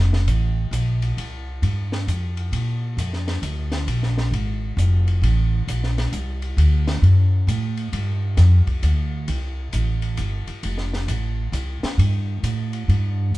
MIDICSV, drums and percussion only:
0, 0, Header, 1, 2, 480
1, 0, Start_track
1, 0, Key_signature, -1, "major"
1, 0, Tempo, 450789
1, 1248, Time_signature, 3, 2, 24, 8
1, 14243, End_track
2, 0, Start_track
2, 0, Title_t, "Drums"
2, 140, Note_on_c, 9, 38, 40
2, 247, Note_off_c, 9, 38, 0
2, 294, Note_on_c, 9, 44, 52
2, 294, Note_on_c, 9, 51, 58
2, 400, Note_off_c, 9, 44, 0
2, 400, Note_off_c, 9, 51, 0
2, 773, Note_on_c, 9, 44, 56
2, 773, Note_on_c, 9, 51, 64
2, 880, Note_off_c, 9, 44, 0
2, 880, Note_off_c, 9, 51, 0
2, 1087, Note_on_c, 9, 51, 44
2, 1194, Note_off_c, 9, 51, 0
2, 1257, Note_on_c, 9, 51, 62
2, 1363, Note_off_c, 9, 51, 0
2, 1733, Note_on_c, 9, 51, 57
2, 1840, Note_off_c, 9, 51, 0
2, 2048, Note_on_c, 9, 38, 44
2, 2154, Note_off_c, 9, 38, 0
2, 2217, Note_on_c, 9, 44, 44
2, 2217, Note_on_c, 9, 51, 51
2, 2323, Note_off_c, 9, 44, 0
2, 2323, Note_off_c, 9, 51, 0
2, 2525, Note_on_c, 9, 51, 44
2, 2631, Note_off_c, 9, 51, 0
2, 2692, Note_on_c, 9, 51, 67
2, 2798, Note_off_c, 9, 51, 0
2, 3177, Note_on_c, 9, 44, 50
2, 3177, Note_on_c, 9, 51, 59
2, 3284, Note_off_c, 9, 44, 0
2, 3284, Note_off_c, 9, 51, 0
2, 3337, Note_on_c, 9, 38, 27
2, 3443, Note_off_c, 9, 38, 0
2, 3489, Note_on_c, 9, 38, 41
2, 3490, Note_on_c, 9, 51, 42
2, 3596, Note_off_c, 9, 38, 0
2, 3597, Note_off_c, 9, 51, 0
2, 3649, Note_on_c, 9, 44, 49
2, 3649, Note_on_c, 9, 51, 59
2, 3756, Note_off_c, 9, 44, 0
2, 3756, Note_off_c, 9, 51, 0
2, 3958, Note_on_c, 9, 38, 47
2, 3959, Note_on_c, 9, 51, 44
2, 4064, Note_off_c, 9, 38, 0
2, 4065, Note_off_c, 9, 51, 0
2, 4128, Note_on_c, 9, 51, 66
2, 4235, Note_off_c, 9, 51, 0
2, 4290, Note_on_c, 9, 38, 28
2, 4396, Note_off_c, 9, 38, 0
2, 4447, Note_on_c, 9, 38, 43
2, 4554, Note_off_c, 9, 38, 0
2, 4615, Note_on_c, 9, 51, 53
2, 4722, Note_off_c, 9, 51, 0
2, 5094, Note_on_c, 9, 44, 50
2, 5094, Note_on_c, 9, 51, 54
2, 5200, Note_off_c, 9, 44, 0
2, 5200, Note_off_c, 9, 51, 0
2, 5404, Note_on_c, 9, 51, 43
2, 5511, Note_off_c, 9, 51, 0
2, 5573, Note_on_c, 9, 51, 60
2, 5679, Note_off_c, 9, 51, 0
2, 6052, Note_on_c, 9, 44, 53
2, 6052, Note_on_c, 9, 51, 64
2, 6158, Note_off_c, 9, 44, 0
2, 6158, Note_off_c, 9, 51, 0
2, 6214, Note_on_c, 9, 38, 28
2, 6321, Note_off_c, 9, 38, 0
2, 6369, Note_on_c, 9, 38, 42
2, 6369, Note_on_c, 9, 51, 48
2, 6475, Note_off_c, 9, 51, 0
2, 6476, Note_off_c, 9, 38, 0
2, 6522, Note_on_c, 9, 44, 39
2, 6522, Note_on_c, 9, 51, 52
2, 6629, Note_off_c, 9, 44, 0
2, 6629, Note_off_c, 9, 51, 0
2, 6837, Note_on_c, 9, 51, 43
2, 6943, Note_off_c, 9, 51, 0
2, 7007, Note_on_c, 9, 51, 66
2, 7114, Note_off_c, 9, 51, 0
2, 7320, Note_on_c, 9, 38, 48
2, 7321, Note_on_c, 9, 51, 42
2, 7426, Note_off_c, 9, 38, 0
2, 7428, Note_off_c, 9, 51, 0
2, 7491, Note_on_c, 9, 51, 49
2, 7598, Note_off_c, 9, 51, 0
2, 7968, Note_on_c, 9, 44, 52
2, 7968, Note_on_c, 9, 51, 61
2, 8075, Note_off_c, 9, 44, 0
2, 8075, Note_off_c, 9, 51, 0
2, 8276, Note_on_c, 9, 51, 42
2, 8383, Note_off_c, 9, 51, 0
2, 8443, Note_on_c, 9, 51, 66
2, 8549, Note_off_c, 9, 51, 0
2, 8914, Note_on_c, 9, 38, 35
2, 8915, Note_on_c, 9, 44, 51
2, 8915, Note_on_c, 9, 51, 58
2, 9021, Note_off_c, 9, 38, 0
2, 9022, Note_off_c, 9, 44, 0
2, 9022, Note_off_c, 9, 51, 0
2, 9234, Note_on_c, 9, 51, 46
2, 9235, Note_on_c, 9, 36, 48
2, 9340, Note_off_c, 9, 51, 0
2, 9341, Note_off_c, 9, 36, 0
2, 9400, Note_on_c, 9, 44, 44
2, 9400, Note_on_c, 9, 51, 64
2, 9507, Note_off_c, 9, 44, 0
2, 9507, Note_off_c, 9, 51, 0
2, 9878, Note_on_c, 9, 51, 63
2, 9985, Note_off_c, 9, 51, 0
2, 10356, Note_on_c, 9, 44, 52
2, 10356, Note_on_c, 9, 51, 58
2, 10462, Note_off_c, 9, 44, 0
2, 10462, Note_off_c, 9, 51, 0
2, 10670, Note_on_c, 9, 51, 43
2, 10776, Note_off_c, 9, 51, 0
2, 10832, Note_on_c, 9, 44, 42
2, 10832, Note_on_c, 9, 51, 60
2, 10938, Note_off_c, 9, 44, 0
2, 10938, Note_off_c, 9, 51, 0
2, 11152, Note_on_c, 9, 51, 44
2, 11259, Note_off_c, 9, 51, 0
2, 11320, Note_on_c, 9, 51, 65
2, 11427, Note_off_c, 9, 51, 0
2, 11476, Note_on_c, 9, 38, 30
2, 11582, Note_off_c, 9, 38, 0
2, 11643, Note_on_c, 9, 38, 42
2, 11749, Note_off_c, 9, 38, 0
2, 11800, Note_on_c, 9, 44, 57
2, 11800, Note_on_c, 9, 51, 59
2, 11906, Note_off_c, 9, 44, 0
2, 11906, Note_off_c, 9, 51, 0
2, 12279, Note_on_c, 9, 44, 51
2, 12279, Note_on_c, 9, 51, 57
2, 12385, Note_off_c, 9, 44, 0
2, 12385, Note_off_c, 9, 51, 0
2, 12600, Note_on_c, 9, 38, 61
2, 12601, Note_on_c, 9, 51, 41
2, 12706, Note_off_c, 9, 38, 0
2, 12707, Note_off_c, 9, 51, 0
2, 12769, Note_on_c, 9, 51, 68
2, 12876, Note_off_c, 9, 51, 0
2, 13242, Note_on_c, 9, 44, 44
2, 13242, Note_on_c, 9, 51, 60
2, 13348, Note_off_c, 9, 44, 0
2, 13348, Note_off_c, 9, 51, 0
2, 13555, Note_on_c, 9, 51, 43
2, 13662, Note_off_c, 9, 51, 0
2, 13729, Note_on_c, 9, 51, 53
2, 13836, Note_off_c, 9, 51, 0
2, 14210, Note_on_c, 9, 42, 41
2, 14243, Note_off_c, 9, 42, 0
2, 14243, End_track
0, 0, End_of_file